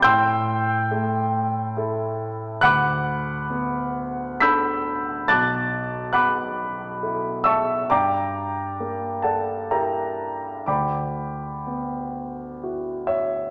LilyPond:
\new Staff \with { instrumentName = "Grand piano" } { \time 3/4 \key d \major \tempo 4 = 68 << { <g'' c''' e''' g'''>2 r4 | <fis'' b'' d''' fis'''>2 <b'' e''' g''' b'''>4 | <a'' d''' fis''' a'''>4 <fis'' b'' d''' fis'''>4. <e'' a'' cis''' e'''>8 | <d'' g'' bes'' d'''>4. <a' d'' fis'' a''>8 <bes' e'' g'' bes''>4 |
<d'' g'' b'' d'''>2~ <d'' g'' b'' d'''>8 <cis'' e''>8 | } \\ { a,4 a4 <e' a'>4 | d,4 b4 <d' a'>4 | b,,4 b4 <e' a'>4 | g,4 bes4 <e' g'>4 |
d,4 b4 <e' fis'>4 | } >> }